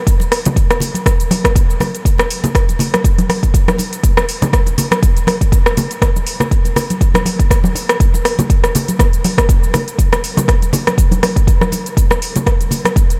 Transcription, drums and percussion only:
0.07 kick, closed hi-hat, cabasa
0.20 muted conga, cabasa
0.32 cross-stick, open hi-hat, cabasa
0.45 closed hi-hat, high conga, low conga, cabasa
0.56 kick, closed hi-hat, cabasa
0.70 cross-stick, closed hi-hat, muted conga, cabasa
0.80 open hi-hat, low conga, cabasa
0.94 closed hi-hat, high conga, cabasa
1.06 kick, cross-stick, closed hi-hat, muted conga, cabasa
1.20 closed hi-hat, cabasa
1.31 open hi-hat, high conga, cabasa
1.45 kick, cross-stick, closed hi-hat, muted conga, cabasa
1.56 kick, closed hi-hat, cabasa
1.70 cabasa
1.80 cross-stick, open hi-hat, muted conga, high conga, low conga, cabasa
1.95 closed hi-hat, cabasa
2.05 kick, closed hi-hat, cabasa
2.18 cross-stick, closed hi-hat, muted conga, cabasa
2.30 open hi-hat, cabasa
2.44 closed hi-hat, high conga, low conga, cabasa
2.55 kick, cross-stick, closed hi-hat, cabasa
2.69 closed hi-hat, muted conga, cabasa
2.79 open hi-hat, low conga, cabasa
2.94 cross-stick, closed hi-hat, high conga, cabasa
3.04 kick, closed hi-hat, muted conga, cabasa
3.18 closed hi-hat, high conga, cabasa
3.29 cross-stick, open hi-hat, high conga, cabasa
3.43 kick, closed hi-hat, muted conga, cabasa
3.54 kick, closed hi-hat, cabasa
3.68 cross-stick, closed hi-hat, high conga, cabasa
3.78 open hi-hat, muted conga, high conga, cabasa
3.93 closed hi-hat, cabasa
4.04 kick, closed hi-hat, cabasa
4.17 cross-stick, muted conga, cabasa
4.29 open hi-hat, cabasa
4.42 closed hi-hat, high conga, low conga, cabasa
4.53 kick, cross-stick, closed hi-hat, cabasa
4.66 closed hi-hat, muted conga, cabasa
4.78 open hi-hat, low conga, cabasa
4.91 cross-stick, closed hi-hat, high conga, cabasa
5.03 kick, closed hi-hat, muted conga, cabasa
5.17 closed hi-hat, cabasa
5.27 cross-stick, open hi-hat, high conga, cabasa
5.41 kick, closed hi-hat, muted conga, cabasa
5.52 kick, closed hi-hat, cabasa
5.66 cross-stick, cabasa
5.77 open hi-hat, muted conga, high conga, low conga, cabasa
5.91 closed hi-hat, cabasa
6.02 kick, cross-stick, closed hi-hat, cabasa
6.16 muted conga, cabasa
6.27 open hi-hat, cabasa
6.40 cross-stick, closed hi-hat, low conga, cabasa
6.51 kick, closed hi-hat, cabasa
6.65 closed hi-hat, muted conga, cabasa
6.76 cross-stick, open hi-hat, low conga, cabasa
6.90 closed hi-hat, high conga, cabasa
7.01 kick, closed hi-hat, muted conga, cabasa
7.14 cross-stick, closed hi-hat, high conga, cabasa
7.25 open hi-hat, high conga, cabasa
7.39 kick, closed hi-hat, muted conga, cabasa
7.51 kick, cross-stick, closed hi-hat, cabasa
7.64 high conga, cabasa
7.75 open hi-hat, muted conga, high conga, cabasa
7.89 cross-stick, closed hi-hat, cabasa
8.00 kick, closed hi-hat, cabasa
8.14 muted conga, cabasa
8.25 cross-stick, open hi-hat, cabasa
8.39 closed hi-hat, high conga, low conga, cabasa
8.50 kick, closed hi-hat, cabasa
8.64 cross-stick, closed hi-hat, muted conga, cabasa
8.75 open hi-hat, low conga, cabasa
8.88 closed hi-hat, high conga, cabasa
8.99 kick, cross-stick, closed hi-hat, muted conga, cabasa
9.13 closed hi-hat, cabasa
9.24 open hi-hat, high conga, cabasa
9.38 kick, cross-stick, closed hi-hat, muted conga, cabasa
9.49 kick, closed hi-hat, cabasa
9.64 cabasa
9.74 cross-stick, open hi-hat, muted conga, high conga, low conga, cabasa
9.88 closed hi-hat, cabasa
9.99 kick, closed hi-hat, cabasa
10.12 cross-stick, closed hi-hat, muted conga, cabasa
10.24 open hi-hat, cabasa
10.37 closed hi-hat, high conga, low conga, cabasa
10.48 kick, cross-stick, closed hi-hat, cabasa
10.62 closed hi-hat, muted conga, cabasa
10.73 open hi-hat, low conga, cabasa
10.87 cross-stick, closed hi-hat, high conga, cabasa
10.98 kick, closed hi-hat, muted conga, cabasa
11.11 closed hi-hat, high conga, cabasa
11.23 cross-stick, open hi-hat, high conga, cabasa
11.36 kick, closed hi-hat, muted conga, cabasa
11.47 kick, closed hi-hat, cabasa
11.61 cross-stick, high conga, cabasa
11.72 open hi-hat, muted conga, high conga, cabasa
11.86 closed hi-hat, cabasa
11.97 kick, closed hi-hat, cabasa
12.11 cross-stick, muted conga, cabasa
12.22 open hi-hat, cabasa
12.36 closed hi-hat, high conga, low conga, cabasa
12.46 kick, cross-stick, closed hi-hat, cabasa
12.61 closed hi-hat, muted conga, cabasa
12.71 open hi-hat, low conga, cabasa
12.85 cross-stick, closed hi-hat, high conga, cabasa
12.96 kick, closed hi-hat, muted conga, cabasa
13.10 closed hi-hat, cabasa

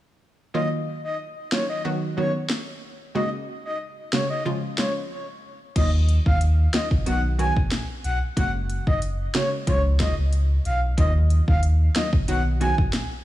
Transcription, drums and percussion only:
1.52 snare
2.49 snare
4.13 snare
4.78 snare
5.76 kick, closed hi-hat, crash
6.09 closed hi-hat
6.26 kick
6.41 closed hi-hat
6.74 snare, closed hi-hat
6.91 kick
7.06 closed hi-hat
7.39 closed hi-hat
7.56 kick
7.71 snare, closed hi-hat
8.04 closed hi-hat
8.37 kick, closed hi-hat
8.70 closed hi-hat
8.87 kick
9.02 closed hi-hat
9.34 snare, closed hi-hat
9.67 kick, closed hi-hat
10.00 kick, snare, closed hi-hat
10.33 closed hi-hat
10.65 closed hi-hat
10.98 kick, closed hi-hat
11.30 closed hi-hat
11.48 kick
11.63 closed hi-hat
11.95 snare, closed hi-hat
12.13 kick
12.28 closed hi-hat
12.61 closed hi-hat
12.78 kick
12.93 snare, closed hi-hat

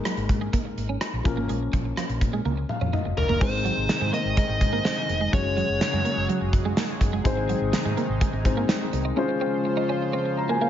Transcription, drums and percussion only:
0.05 cross-stick, closed hi-hat
0.17 closed hi-hat
0.29 kick, closed hi-hat
0.53 kick, closed hi-hat
0.78 closed hi-hat
1.01 cross-stick, closed hi-hat
1.25 kick, closed hi-hat
1.49 closed hi-hat
1.73 kick, closed hi-hat
1.97 cross-stick, closed hi-hat
2.09 closed hi-hat
2.21 kick, closed hi-hat
2.45 high tom
2.69 mid tom
2.81 mid tom
2.93 mid tom
3.17 floor tom
3.29 floor tom
3.41 kick, crash
3.65 closed hi-hat
3.89 snare, closed hi-hat
4.13 closed hi-hat
4.37 kick, closed hi-hat
4.61 kick, closed hi-hat
4.85 snare, closed hi-hat
5.09 closed hi-hat
5.33 kick, closed hi-hat
5.57 closed hi-hat
5.81 snare, closed hi-hat
6.05 closed hi-hat
6.29 closed hi-hat
6.53 kick, closed hi-hat
6.77 snare, closed hi-hat
7.01 kick, closed hi-hat
7.25 kick, closed hi-hat
7.49 closed hi-hat
7.73 snare, closed hi-hat
7.97 closed hi-hat
8.21 kick, closed hi-hat
8.45 kick, closed hi-hat
8.69 snare, closed hi-hat
8.93 closed hi-hat

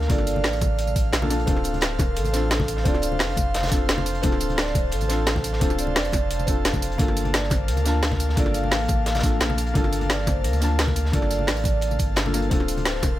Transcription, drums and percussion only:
0.01 snare
0.10 kick, closed hi-hat, high conga
0.18 snare
0.27 closed hi-hat, tambourine
0.36 high conga
0.44 snare, closed hi-hat, open hi-hat
0.53 tambourine
0.61 kick, closed hi-hat, tambourine, high conga
0.79 closed hi-hat
0.87 tambourine, high conga
0.96 kick, closed hi-hat, tambourine
1.13 snare, closed hi-hat
1.22 high conga
1.30 closed hi-hat, open hi-hat, tambourine
1.39 closed hi-hat
1.47 kick, closed hi-hat, high conga
1.56 snare
1.64 closed hi-hat, tambourine
1.74 closed hi-hat, high conga
1.81 snare, closed hi-hat
1.91 snare
1.99 kick, snare, closed hi-hat, tambourine, high conga
2.16 closed hi-hat
2.25 closed hi-hat, tambourine, high conga
2.33 snare, closed hi-hat, tambourine
2.51 snare, closed hi-hat
2.60 kick, snare, high conga
2.68 closed hi-hat, open hi-hat, tambourine
2.77 snare
2.85 kick, closed hi-hat, high conga
2.94 snare
3.02 closed hi-hat, tambourine
3.12 high conga
3.19 snare, closed hi-hat, open hi-hat
3.37 kick, closed hi-hat, tambourine, high conga
3.54 snare, closed hi-hat
3.63 snare, closed hi-hat, tambourine, high conga
3.67 snare, closed hi-hat
3.72 kick, closed hi-hat, tambourine
3.89 snare, closed hi-hat
3.98 high conga
4.06 closed hi-hat, open hi-hat, tambourine
4.15 closed hi-hat
4.23 kick, closed hi-hat, high conga
4.32 snare
4.40 closed hi-hat, tambourine
4.49 closed hi-hat, high conga
4.58 snare, closed hi-hat
4.66 snare
4.75 kick, closed hi-hat, tambourine, high conga
4.91 closed hi-hat
5.00 closed hi-hat, tambourine, high conga
5.09 snare, closed hi-hat, tambourine
5.26 snare, closed hi-hat
5.36 kick, snare, high conga
5.44 closed hi-hat, open hi-hat, tambourine
5.53 snare
5.61 kick, closed hi-hat, high conga
5.70 snare, tambourine
5.78 closed hi-hat, tambourine
5.87 high conga
5.96 snare, closed hi-hat, open hi-hat
6.05 tambourine
6.13 kick, snare, closed hi-hat, tambourine, high conga
6.31 closed hi-hat
6.39 tambourine, high conga
6.47 kick, closed hi-hat, tambourine
6.65 snare, closed hi-hat
6.74 kick, tambourine, high conga
6.82 closed hi-hat, open hi-hat, tambourine
6.92 closed hi-hat
6.98 kick, closed hi-hat, high conga
7.08 snare
7.16 closed hi-hat, tambourine
7.25 closed hi-hat, high conga
7.34 snare, closed hi-hat
7.43 snare
7.50 kick, snare, closed hi-hat, tambourine, high conga
7.68 closed hi-hat
7.77 closed hi-hat, tambourine, high conga
7.85 snare, closed hi-hat, tambourine
8.03 snare, closed hi-hat
8.12 kick, snare, high conga
8.20 closed hi-hat, open hi-hat, tambourine
8.29 snare
8.37 kick, closed hi-hat, high conga
8.46 snare
8.54 closed hi-hat, tambourine
8.63 high conga
8.71 snare, closed hi-hat, open hi-hat
8.88 kick, closed hi-hat, tambourine, high conga
9.06 snare, closed hi-hat
9.15 snare, closed hi-hat, tambourine, high conga
9.19 snare, closed hi-hat
9.23 kick, closed hi-hat, tambourine
9.41 snare, closed hi-hat
9.50 high conga
9.58 closed hi-hat, open hi-hat, tambourine
9.67 closed hi-hat
9.75 kick, closed hi-hat, high conga
9.84 snare
9.93 closed hi-hat, tambourine
10.01 closed hi-hat, high conga
10.10 snare, closed hi-hat
10.18 snare
10.27 kick, snare, closed hi-hat, tambourine, high conga
10.44 closed hi-hat
10.53 closed hi-hat, tambourine, high conga
10.61 snare, closed hi-hat, tambourine
10.79 snare, closed hi-hat
10.87 kick, snare, high conga
10.96 closed hi-hat, open hi-hat, tambourine
11.05 snare
11.13 kick, closed hi-hat, high conga
11.22 snare
11.31 closed hi-hat, tambourine
11.39 high conga
11.47 snare, closed hi-hat, open hi-hat
11.57 tambourine
11.64 kick, closed hi-hat, tambourine, high conga
11.81 closed hi-hat
11.91 tambourine, high conga
11.99 kick, closed hi-hat, tambourine
12.16 snare, closed hi-hat
12.26 high conga
12.34 closed hi-hat, open hi-hat, tambourine
12.42 closed hi-hat
12.51 kick, closed hi-hat, high conga
12.60 snare
12.68 closed hi-hat, tambourine
12.78 closed hi-hat, high conga
12.85 snare, closed hi-hat
12.95 snare
13.02 kick, snare, closed hi-hat, tambourine, high conga

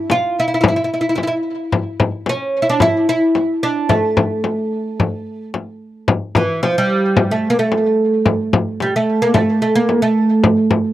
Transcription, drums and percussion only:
0.10 frame drum
0.64 frame drum
1.18 frame drum
1.72 frame drum
2.00 frame drum
2.26 frame drum
2.80 frame drum
3.35 frame drum
3.89 frame drum
4.17 frame drum
4.44 frame drum
5.00 frame drum
5.54 frame drum
6.08 frame drum
6.35 frame drum
6.63 frame drum
7.17 frame drum
7.72 frame drum
8.26 frame drum
8.53 frame drum
8.80 frame drum
9.34 frame drum
9.89 frame drum
10.44 frame drum
10.71 frame drum

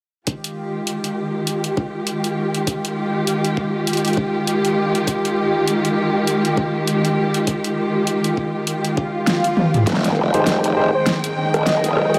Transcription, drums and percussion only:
0.27 kick, closed hi-hat
0.44 closed hi-hat
0.87 closed hi-hat
1.04 closed hi-hat
1.47 closed hi-hat
1.64 closed hi-hat
1.77 kick
2.07 closed hi-hat
2.24 closed hi-hat
2.54 closed hi-hat
2.67 kick, closed hi-hat
2.85 closed hi-hat
3.27 closed hi-hat
3.45 closed hi-hat
3.57 kick
3.87 closed hi-hat
3.93 closed hi-hat
3.97 closed hi-hat
4.05 closed hi-hat
4.08 closed hi-hat
4.13 closed hi-hat
4.17 kick
4.47 closed hi-hat
4.65 closed hi-hat
4.95 closed hi-hat
5.07 kick, closed hi-hat
5.25 closed hi-hat
5.68 closed hi-hat
5.85 closed hi-hat
6.27 closed hi-hat
6.45 closed hi-hat
6.57 kick
6.87 closed hi-hat
7.05 closed hi-hat
7.34 closed hi-hat
7.47 kick, closed hi-hat
7.64 closed hi-hat
8.07 closed hi-hat
8.24 closed hi-hat
8.37 kick
8.67 closed hi-hat
8.85 closed hi-hat
8.97 kick
9.27 snare, closed hi-hat
9.44 closed hi-hat
9.57 high tom
9.74 closed hi-hat, mid tom
9.87 kick, snare, closed hi-hat
9.93 snare
9.97 snare
10.04 snare, closed hi-hat
10.07 snare
10.12 snare
10.34 closed hi-hat
10.47 kick, snare, closed hi-hat
10.64 closed hi-hat
11.06 kick, snare, closed hi-hat
11.24 closed hi-hat
11.54 cross-stick, closed hi-hat
11.67 kick, snare, closed hi-hat
11.84 closed hi-hat
11.97 cross-stick
12.14 closed hi-hat

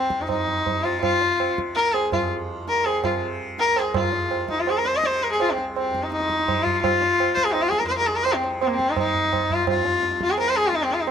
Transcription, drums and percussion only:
0.10 tabla ke
0.29 tabla na, tabla ge
0.48 tabla ge
0.66 tabla tin, tabla ge
0.85 tabla na
1.03 tabla na, tabla ge
1.21 tabla te
1.40 tabla na
1.58 tabla ke
1.77 tabla te
1.94 tabla na
2.12 tabla na, tabla ge
2.68 tabla te
2.86 tabla na
3.04 tabla na, tabla ge
3.58 tabla te
3.76 tabla na
3.94 tabla na, tabla ge
4.12 tabla te
4.31 tabla na
4.49 tabla ke
4.67 tabla na
4.85 tabla te
5.04 tabla te
5.21 tabla te
5.40 tabla na
5.58 tabla te
5.76 tabla na
5.95 tabla ke
6.12 tabla te
6.20 tabla te
6.30 tabla ke
6.39 tabla te
6.48 tabla na, tabla ge
6.66 tabla ge
6.84 tabla na, tabla ge
7.02 tabla te
7.20 tabla na
7.37 tabla ke
7.55 tabla na
7.72 tabla ke
7.81 tabla te
7.90 tabla te
8.08 tabla te
8.26 tabla na
8.44 tabla te
8.61 tabla na
8.79 tabla ke
8.96 tabla na, tabla ge
9.15 tabla ge
9.33 tabla na, tabla ge
9.50 tabla ge
9.67 tabla na, tabla ge
9.85 tabla te
10.03 tabla te
10.12 tabla te
10.21 tabla ke
10.29 tabla te
10.37 tabla na
10.55 tabla te
10.73 tabla te
10.91 tabla te
11.07 tabla na

